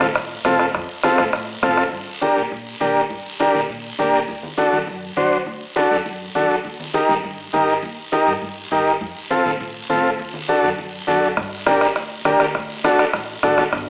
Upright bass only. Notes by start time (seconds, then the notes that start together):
0.01 A2
0.16 A2
0.45 A2
0.74 F2
1.19 A2
1.34 A2
1.63 A2
1.93 G2
2.37 A#2
2.52 A#2
2.81 A#2
3.10 G2
3.54 A#2
3.69 A#2
3.99 A#2
4.28 D2
4.73 F#2
4.87 F#2
5.17 F#2
5.47 D2
5.91 F#2
6.06 F#2
6.35 F#2
6.65 D#2
7.09 G2
7.24 G2
7.53 G2
7.83 D#2
8.27 G2
8.42 G2
8.72 G2
9.01 F2
9.46 A2
9.60 A2
9.90 A2
10.19 D2
10.64 F#2
10.78 F#2
11.08 F#2
11.37 G2
11.96 D2
12.25 D2
12.55 D2
13.14 A1
13.43 A1
13.73 G1